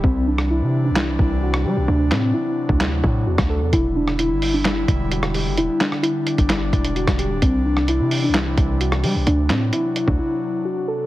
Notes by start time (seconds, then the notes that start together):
0.04 C2 C3 E3 C4 D4, kick
0.27 D4
0.38 cross-stick
0.51 E4
0.61 C3
0.85 D4
0.90 C2
0.96 E4, snare, clap
1.19 C2, kick
1.42 F#4
1.54 cross-stick
1.65 G3 G4
1.77 C2
1.88 D2 F#3 D4
2.11 A2 C4, snare, clap
2.34 E4
2.69 D2 D4, kick
2.81 E4, snare, clap
3.04 A2, kick
3.27 E2 F#4
3.38 D2, kick, cross-stick, snare
3.50 A4
3.61 E2
3.73 E1 D3 G3 E4, kick, closed hi-hat
3.96 D4
4.08 cross-stick
4.19 E4, closed hi-hat
4.31 G1
4.42 open hi-hat
4.54 D4
4.65 E4, snare, clap, closed hi-hat
4.88 E1, kick, closed hi-hat
5.11 F#4, closed hi-hat
5.23 cross-stick
5.34 G4, open hi-hat
5.46 F#1
5.57 E1 D4 E4, closed hi-hat
5.81 D4, snare, clap
5.92 cross-stick
6.03 E4, closed hi-hat
6.27 closed hi-hat, open hi-hat
6.38 G1 D4, kick, closed hi-hat
6.50 E4, snare, clap, closed hi-hat
6.73 E1, kick, closed hi-hat
6.85 closed hi-hat
6.96 F#4, closed hi-hat
7.07 E1, kick, cross-stick, snare, closed hi-hat
7.19 G4, closed hi-hat
7.31 D1
7.42 C2 C3 E3 C4, kick, closed hi-hat
7.66 D4
7.77 cross-stick
7.88 E4, closed hi-hat
8.00 C3
8.11 open hi-hat
8.24 D4
8.29 C2
8.34 E4, snare, clap, closed hi-hat
8.57 C2, kick, closed hi-hat
8.81 F#4, closed hi-hat
8.92 cross-stick
9.03 G3 G4, open hi-hat
9.15 C2
9.27 D2 F#3 D4, closed hi-hat
9.50 A2 C4, snare, clap
9.72 E4, closed hi-hat
9.96 closed hi-hat
10.07 D2 D4, kick
10.19 E4
10.65 F#4
10.88 A4